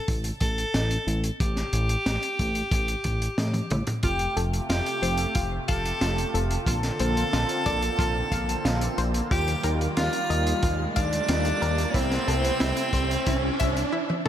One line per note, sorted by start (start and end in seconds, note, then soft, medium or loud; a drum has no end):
0.00 0.28 A4 loud
0.08 0.32 A1 medium
0.08 kick loud
0.08 closed hi-hat medium
0.24 closed hi-hat medium
0.40 0.65 A1 medium
0.40 1.27 A4 loud
0.40 kick loud
0.40 closed hi-hat medium
0.58 closed hi-hat soft
0.74 0.98 A1 medium
0.74 snare loud
0.74 closed hi-hat loud
0.91 closed hi-hat medium
1.07 1.31 A1 loud
1.07 closed hi-hat medium
1.24 closed hi-hat medium
1.40 1.64 A1 loud
1.40 3.91 G4 loud
1.40 kick loud
1.40 closed hi-hat loud
1.56 snare soft
1.56 closed hi-hat medium
1.73 1.97 A1 loud
1.73 closed hi-hat medium
1.89 closed hi-hat medium
2.06 2.18 A1 medium
2.06 snare loud
2.06 closed hi-hat loud
2.23 closed hi-hat medium
2.39 2.63 A1 loud
2.39 kick medium
2.39 closed hi-hat medium
2.55 closed hi-hat soft
2.71 2.95 A1 medium
2.71 kick loud
2.71 closed hi-hat loud
2.88 closed hi-hat medium
3.04 3.29 A1 medium
3.04 kick medium
3.04 closed hi-hat medium
3.22 closed hi-hat medium
3.38 3.61 A2 medium
3.38 snare loud
3.38 closed hi-hat loud
3.38 high tom medium
3.54 closed hi-hat medium
3.54 high tom medium
3.70 3.83 A1 medium
3.70 closed hi-hat medium
3.70 mid tom medium
3.87 closed hi-hat medium
3.87 mid tom medium
4.03 4.27 F1 loud
4.03 6.65 C3 medium
4.03 6.65 A3 medium
4.03 4.29 F4 medium
4.03 9.27 F4 medium
4.03 4.38 G4 loud
4.03 6.65 G4 medium
4.03 4.38 G5 loud
4.03 kick loud
4.03 closed hi-hat loud
4.03 riser medium
4.19 closed hi-hat medium
4.37 4.60 F1 loud
4.37 4.68 A4 medium
4.37 closed hi-hat medium
4.53 closed hi-hat medium
4.69 4.81 F1 medium
4.69 4.85 F4 medium
4.69 5.55 G4 loud
4.69 5.55 G5 loud
4.69 snare loud
4.69 closed hi-hat loud
4.86 closed hi-hat medium
5.02 5.26 F1 loud
5.02 5.27 C5 medium
5.02 closed hi-hat medium
5.17 closed hi-hat medium
5.35 5.59 F1 medium
5.35 5.60 F4 medium
5.35 kick loud
5.35 closed hi-hat loud
5.68 5.92 F1 medium
5.68 6.54 A4 loud
5.68 6.00 F5 loud
5.68 6.54 A5 loud
5.68 kick loud
5.68 closed hi-hat medium
5.85 closed hi-hat medium
6.01 6.25 F1 medium
6.01 6.16 F4 medium
6.01 snare loud
6.01 closed hi-hat loud
6.18 closed hi-hat medium
6.34 6.58 F1 loud
6.34 6.59 A4 medium
6.34 closed hi-hat medium
6.51 closed hi-hat medium
6.67 6.91 A#1 loud
6.67 9.28 D3 medium
6.67 11.91 A#3 medium
6.67 9.28 C4 medium
6.67 6.92 F4 medium
6.67 9.18 A4 loud
6.67 9.18 A5 loud
6.67 kick loud
6.67 closed hi-hat loud
6.83 snare soft
6.83 closed hi-hat medium
7.00 7.24 A#1 loud
7.00 7.32 C5 medium
7.00 closed hi-hat medium
7.17 closed hi-hat medium
7.33 7.45 A#1 medium
7.33 7.48 F4 medium
7.33 snare loud
7.33 closed hi-hat loud
7.49 closed hi-hat medium
7.66 7.90 A#1 loud
7.66 7.91 D5 medium
7.66 kick medium
7.66 closed hi-hat medium
7.82 closed hi-hat medium
7.99 8.23 A#1 loud
7.99 8.24 F4 medium
7.99 kick loud
7.99 closed hi-hat loud
8.32 8.56 A#1 medium
8.32 8.63 F5 loud
8.32 kick medium
8.32 closed hi-hat medium
8.49 closed hi-hat medium
8.65 8.89 A#1 medium
8.65 8.80 F4 medium
8.65 snare loud
8.65 closed hi-hat loud
8.81 closed hi-hat medium
8.98 9.22 A#1 loud
8.98 9.23 C5 medium
8.98 closed hi-hat medium
9.14 closed hi-hat medium
9.31 9.55 D#2 loud
9.31 11.92 D#3 medium
9.31 13.89 G3 medium
9.31 9.56 F4 medium
9.31 11.92 F4 medium
9.31 9.66 G4 loud
9.31 9.66 G5 loud
9.31 kick loud
9.31 closed hi-hat loud
9.48 closed hi-hat medium
9.63 9.88 D#2 loud
9.63 9.95 A#4 medium
9.63 closed hi-hat medium
9.81 closed hi-hat medium
9.97 10.09 D#2 medium
9.97 10.12 F4 medium
9.97 10.83 F4 loud
9.97 10.83 F5 loud
9.97 snare loud
9.97 closed hi-hat loud
10.13 closed hi-hat medium
10.30 10.54 D#2 loud
10.30 10.55 D#5 medium
10.30 closed hi-hat medium
10.47 closed hi-hat medium
10.63 10.87 D#2 medium
10.63 10.88 F4 medium
10.63 kick loud
10.63 closed hi-hat medium
10.96 11.20 D#2 medium
10.96 11.96 D4 loud
10.96 11.97 D5 loud
10.96 11.27 F5 loud
10.96 kick loud
10.96 closed hi-hat medium
11.13 closed hi-hat medium
11.28 11.53 D#2 medium
11.28 11.44 F4 medium
11.28 snare loud
11.28 closed hi-hat loud
11.45 closed hi-hat medium
11.62 11.86 D#2 loud
11.62 11.87 A#4 medium
11.62 closed hi-hat medium
11.78 closed hi-hat medium
11.94 12.18 C2 loud
11.94 13.91 C3 medium
11.94 13.91 A3 medium
11.94 13.93 C4 loud
11.94 12.20 E4 medium
11.94 13.91 E4 medium
11.94 13.93 C5 loud
11.94 kick loud
11.94 closed hi-hat loud
12.11 snare soft
12.11 closed hi-hat soft
12.28 12.52 C2 loud
12.28 12.59 A4 medium
12.28 closed hi-hat medium
12.45 closed hi-hat medium
12.60 12.73 C2 medium
12.60 12.76 E4 medium
12.60 snare loud
12.60 closed hi-hat loud
12.77 closed hi-hat medium
12.93 13.17 C2 loud
12.93 13.19 C5 medium
12.93 kick medium
12.93 closed hi-hat medium
13.11 closed hi-hat medium
13.27 13.50 C2 medium
13.27 13.52 E4 medium
13.27 kick loud
13.27 closed hi-hat loud
13.60 13.84 C2 medium
13.60 13.91 E5 loud
13.60 kick medium
13.60 closed hi-hat medium
13.77 closed hi-hat medium
13.93 14.08 E4 medium
14.10 high tom medium